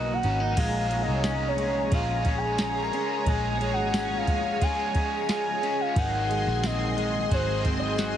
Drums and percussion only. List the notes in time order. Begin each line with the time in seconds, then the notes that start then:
0.23 ride
0.57 kick, crash, ride
0.91 ride
1.24 snare, ride, tambourine
1.58 ride
1.92 kick, ride
2.25 kick, ride
2.58 snare, ride, tambourine
2.93 ride
3.26 kick, ride
3.61 ride
3.94 snare, ride, tambourine
4.27 kick, ride
4.61 kick, ride
4.95 kick, ride
5.29 snare, ride, tambourine
5.63 ride
5.96 kick, ride
6.31 ride
6.64 snare, ride, tambourine
6.98 ride
7.31 kick, ride
7.65 kick, ride
7.98 snare, ride, tambourine